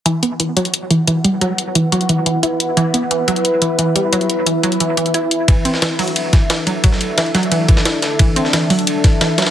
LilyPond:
<<
  \new Staff \with { instrumentName = "Ambient pad" } { \time 4/4 \key d \mixolydian \tempo 4 = 177 << { fis''1~ | fis''1 | e''1~ | e''1 |
e''1~ | e''1~ | e''1 | } \\ { <e' b'>1~ | <e' b'>1~ | <e' b'>1~ | <e' b'>1 |
<d' a'>1~ | <d' a'>1~ | <d' a'>1 | } >> }
  \new Staff \with { instrumentName = "Synth arpeggio sound" } { \clef bass \time 4/4 \key d \mixolydian e8 b8 e8 fis8 r8 e8 e8 g8 | fis8 r8 e8 fis8 e8 e8 e'8 r8 | e8 b8 e8 fis8 r8 e8 e8 g8 | fis8 r8 e8 fis8 e8 e8 e'8 r8 |
e8 c'8 e8 fis8 r8 e8 e8 fis8 | fis8 r8 e8 fis8 e8 e8 e'8 r8 | e8 c'8 e8 fis8 r8 e8 e8 fis8 | }
  \new DrumStaff \with { instrumentName = "Drums" } \drummode { \time 4/4 hh8 hh8 hh8 hh16 hh16 hh8 hh8 hh8 hh8 | hh8 hh8 hh8 hh16 hh16 hh8 hh8 hh8 hh8 | hh8 hh8 hh8 hh16 hh16 hh8 hh8 hh8 hh8 | hh16 hh16 hh8 hh8 hh16 hh16 hh8 hh16 hh16 hh8 hh8 |
<hh bd cymr>8 <hh cymr>16 sn16 <hh cymr sn>8 <hh hho>16 hh16 <hh cymr>8 <hh bd cymr sn>8 <hh cymr sn>8 <hh cymr>8 | <hh bd cymr>16 sn16 <hh cymr>8 <hh cymr sn>16 cymr16 <hh cymr sn>16 hh16 <hh cymr>8 <hh bd cymr>16 sn16 <hh cymr sn>8 <hh cymr sn>8 | <hh bd cymr>8 <hh cymr>16 sn16 <hh cymr sn>8 <hh hho>16 hh16 <hh cymr>8 <hh bd cymr sn>8 <hh cymr sn>8 <hh cymr sn>32 <cymr sn>32 <cymr sn>16 | }
>>